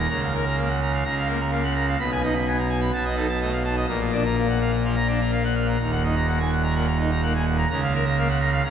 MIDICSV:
0, 0, Header, 1, 2, 480
1, 0, Start_track
1, 0, Tempo, 473934
1, 102, Time_signature, 4, 2, 24, 8
1, 8812, End_track
2, 0, Start_track
2, 0, Title_t, "Pipe organ"
2, 0, Program_c, 0, 19
2, 101, Note_on_c, 0, 37, 98
2, 101, Note_on_c, 0, 82, 125
2, 102, Note_on_c, 0, 49, 95
2, 208, Note_off_c, 0, 82, 0
2, 225, Note_on_c, 0, 77, 81
2, 330, Note_off_c, 0, 77, 0
2, 343, Note_on_c, 0, 70, 76
2, 449, Note_off_c, 0, 70, 0
2, 467, Note_on_c, 0, 82, 77
2, 572, Note_off_c, 0, 82, 0
2, 584, Note_on_c, 0, 77, 80
2, 588, Note_on_c, 0, 58, 75
2, 690, Note_off_c, 0, 77, 0
2, 692, Note_off_c, 0, 58, 0
2, 703, Note_on_c, 0, 78, 69
2, 805, Note_off_c, 0, 78, 0
2, 830, Note_on_c, 0, 82, 82
2, 933, Note_off_c, 0, 82, 0
2, 946, Note_on_c, 0, 77, 89
2, 1038, Note_off_c, 0, 37, 0
2, 1039, Note_off_c, 0, 49, 0
2, 1050, Note_off_c, 0, 77, 0
2, 1058, Note_on_c, 0, 37, 86
2, 1060, Note_on_c, 0, 49, 85
2, 1061, Note_on_c, 0, 82, 93
2, 1167, Note_off_c, 0, 82, 0
2, 1187, Note_on_c, 0, 77, 88
2, 1290, Note_off_c, 0, 77, 0
2, 1296, Note_on_c, 0, 58, 89
2, 1296, Note_on_c, 0, 70, 92
2, 1403, Note_off_c, 0, 58, 0
2, 1403, Note_off_c, 0, 70, 0
2, 1416, Note_on_c, 0, 82, 88
2, 1522, Note_off_c, 0, 82, 0
2, 1538, Note_on_c, 0, 77, 89
2, 1539, Note_on_c, 0, 58, 81
2, 1643, Note_off_c, 0, 77, 0
2, 1644, Note_off_c, 0, 58, 0
2, 1655, Note_on_c, 0, 78, 78
2, 1756, Note_off_c, 0, 78, 0
2, 1780, Note_on_c, 0, 82, 94
2, 1884, Note_off_c, 0, 82, 0
2, 1905, Note_on_c, 0, 77, 93
2, 1982, Note_off_c, 0, 37, 0
2, 1983, Note_off_c, 0, 49, 0
2, 2001, Note_off_c, 0, 77, 0
2, 2021, Note_on_c, 0, 35, 113
2, 2022, Note_on_c, 0, 83, 127
2, 2024, Note_on_c, 0, 47, 109
2, 2124, Note_off_c, 0, 83, 0
2, 2142, Note_on_c, 0, 80, 92
2, 2243, Note_off_c, 0, 80, 0
2, 2268, Note_on_c, 0, 75, 86
2, 2269, Note_on_c, 0, 63, 85
2, 2367, Note_off_c, 0, 75, 0
2, 2368, Note_off_c, 0, 63, 0
2, 2383, Note_on_c, 0, 83, 91
2, 2483, Note_off_c, 0, 83, 0
2, 2504, Note_on_c, 0, 59, 83
2, 2508, Note_on_c, 0, 80, 90
2, 2603, Note_off_c, 0, 59, 0
2, 2605, Note_off_c, 0, 80, 0
2, 2617, Note_on_c, 0, 82, 80
2, 2714, Note_off_c, 0, 82, 0
2, 2730, Note_on_c, 0, 80, 92
2, 2835, Note_off_c, 0, 80, 0
2, 2848, Note_on_c, 0, 83, 91
2, 2940, Note_off_c, 0, 35, 0
2, 2942, Note_off_c, 0, 47, 0
2, 2948, Note_off_c, 0, 83, 0
2, 2968, Note_on_c, 0, 81, 127
2, 2969, Note_on_c, 0, 47, 113
2, 2970, Note_on_c, 0, 35, 109
2, 3073, Note_off_c, 0, 81, 0
2, 3086, Note_on_c, 0, 75, 92
2, 3192, Note_off_c, 0, 75, 0
2, 3201, Note_on_c, 0, 63, 93
2, 3201, Note_on_c, 0, 69, 93
2, 3309, Note_off_c, 0, 63, 0
2, 3310, Note_off_c, 0, 69, 0
2, 3325, Note_on_c, 0, 81, 88
2, 3432, Note_off_c, 0, 81, 0
2, 3453, Note_on_c, 0, 57, 86
2, 3454, Note_on_c, 0, 75, 91
2, 3557, Note_off_c, 0, 57, 0
2, 3557, Note_off_c, 0, 75, 0
2, 3572, Note_on_c, 0, 77, 72
2, 3672, Note_off_c, 0, 77, 0
2, 3692, Note_on_c, 0, 81, 86
2, 3798, Note_off_c, 0, 81, 0
2, 3815, Note_on_c, 0, 75, 88
2, 3903, Note_off_c, 0, 35, 0
2, 3903, Note_off_c, 0, 47, 0
2, 3915, Note_off_c, 0, 75, 0
2, 3928, Note_on_c, 0, 34, 102
2, 3929, Note_on_c, 0, 46, 101
2, 3929, Note_on_c, 0, 82, 123
2, 4038, Note_off_c, 0, 82, 0
2, 4055, Note_on_c, 0, 77, 82
2, 4163, Note_off_c, 0, 77, 0
2, 4176, Note_on_c, 0, 74, 76
2, 4179, Note_on_c, 0, 62, 77
2, 4284, Note_off_c, 0, 74, 0
2, 4285, Note_off_c, 0, 62, 0
2, 4308, Note_on_c, 0, 82, 81
2, 4412, Note_off_c, 0, 82, 0
2, 4424, Note_on_c, 0, 58, 75
2, 4427, Note_on_c, 0, 77, 82
2, 4531, Note_off_c, 0, 58, 0
2, 4532, Note_off_c, 0, 77, 0
2, 4546, Note_on_c, 0, 78, 71
2, 4648, Note_off_c, 0, 78, 0
2, 4665, Note_on_c, 0, 77, 78
2, 4773, Note_off_c, 0, 77, 0
2, 4784, Note_on_c, 0, 82, 81
2, 4893, Note_off_c, 0, 82, 0
2, 4907, Note_on_c, 0, 53, 77
2, 4907, Note_on_c, 0, 77, 83
2, 5016, Note_off_c, 0, 53, 0
2, 5016, Note_off_c, 0, 77, 0
2, 5030, Note_on_c, 0, 82, 82
2, 5138, Note_off_c, 0, 82, 0
2, 5144, Note_on_c, 0, 74, 84
2, 5146, Note_on_c, 0, 62, 80
2, 5255, Note_off_c, 0, 74, 0
2, 5256, Note_off_c, 0, 62, 0
2, 5273, Note_on_c, 0, 82, 74
2, 5381, Note_off_c, 0, 82, 0
2, 5385, Note_on_c, 0, 58, 70
2, 5388, Note_on_c, 0, 77, 82
2, 5497, Note_off_c, 0, 58, 0
2, 5498, Note_off_c, 0, 77, 0
2, 5511, Note_on_c, 0, 78, 69
2, 5616, Note_off_c, 0, 78, 0
2, 5624, Note_on_c, 0, 77, 73
2, 5737, Note_off_c, 0, 77, 0
2, 5749, Note_on_c, 0, 82, 74
2, 5837, Note_off_c, 0, 34, 0
2, 5837, Note_off_c, 0, 46, 0
2, 5855, Note_off_c, 0, 82, 0
2, 5874, Note_on_c, 0, 27, 94
2, 5876, Note_on_c, 0, 39, 90
2, 5876, Note_on_c, 0, 82, 115
2, 5984, Note_off_c, 0, 82, 0
2, 5996, Note_on_c, 0, 78, 81
2, 6105, Note_off_c, 0, 78, 0
2, 6119, Note_on_c, 0, 75, 74
2, 6121, Note_on_c, 0, 63, 69
2, 6227, Note_off_c, 0, 75, 0
2, 6228, Note_off_c, 0, 63, 0
2, 6238, Note_on_c, 0, 82, 78
2, 6346, Note_off_c, 0, 82, 0
2, 6360, Note_on_c, 0, 58, 73
2, 6360, Note_on_c, 0, 78, 75
2, 6467, Note_off_c, 0, 58, 0
2, 6467, Note_off_c, 0, 78, 0
2, 6479, Note_on_c, 0, 80, 69
2, 6581, Note_off_c, 0, 80, 0
2, 6602, Note_on_c, 0, 78, 81
2, 6708, Note_off_c, 0, 78, 0
2, 6721, Note_on_c, 0, 82, 79
2, 6827, Note_off_c, 0, 82, 0
2, 6838, Note_on_c, 0, 78, 87
2, 6841, Note_on_c, 0, 46, 81
2, 6945, Note_off_c, 0, 78, 0
2, 6946, Note_off_c, 0, 46, 0
2, 6962, Note_on_c, 0, 82, 82
2, 7067, Note_off_c, 0, 82, 0
2, 7082, Note_on_c, 0, 63, 86
2, 7085, Note_on_c, 0, 75, 83
2, 7186, Note_off_c, 0, 63, 0
2, 7188, Note_off_c, 0, 75, 0
2, 7201, Note_on_c, 0, 82, 79
2, 7305, Note_off_c, 0, 82, 0
2, 7320, Note_on_c, 0, 78, 90
2, 7322, Note_on_c, 0, 58, 80
2, 7424, Note_off_c, 0, 78, 0
2, 7425, Note_off_c, 0, 58, 0
2, 7442, Note_on_c, 0, 80, 69
2, 7539, Note_off_c, 0, 80, 0
2, 7560, Note_on_c, 0, 78, 84
2, 7663, Note_off_c, 0, 78, 0
2, 7681, Note_on_c, 0, 82, 86
2, 7749, Note_off_c, 0, 27, 0
2, 7750, Note_off_c, 0, 39, 0
2, 7779, Note_off_c, 0, 82, 0
2, 7801, Note_on_c, 0, 49, 101
2, 7803, Note_on_c, 0, 37, 107
2, 7804, Note_on_c, 0, 82, 127
2, 7906, Note_off_c, 0, 82, 0
2, 7928, Note_on_c, 0, 77, 89
2, 8028, Note_off_c, 0, 77, 0
2, 8047, Note_on_c, 0, 70, 83
2, 8146, Note_off_c, 0, 70, 0
2, 8163, Note_on_c, 0, 82, 89
2, 8263, Note_off_c, 0, 82, 0
2, 8287, Note_on_c, 0, 77, 85
2, 8288, Note_on_c, 0, 58, 85
2, 8385, Note_off_c, 0, 58, 0
2, 8385, Note_off_c, 0, 77, 0
2, 8397, Note_on_c, 0, 78, 76
2, 8493, Note_off_c, 0, 78, 0
2, 8515, Note_on_c, 0, 82, 95
2, 8616, Note_off_c, 0, 82, 0
2, 8637, Note_on_c, 0, 77, 93
2, 8732, Note_off_c, 0, 49, 0
2, 8733, Note_off_c, 0, 37, 0
2, 8737, Note_off_c, 0, 77, 0
2, 8751, Note_on_c, 0, 82, 102
2, 8752, Note_on_c, 0, 49, 98
2, 8753, Note_on_c, 0, 37, 95
2, 8812, Note_off_c, 0, 37, 0
2, 8812, Note_off_c, 0, 49, 0
2, 8812, Note_off_c, 0, 82, 0
2, 8812, End_track
0, 0, End_of_file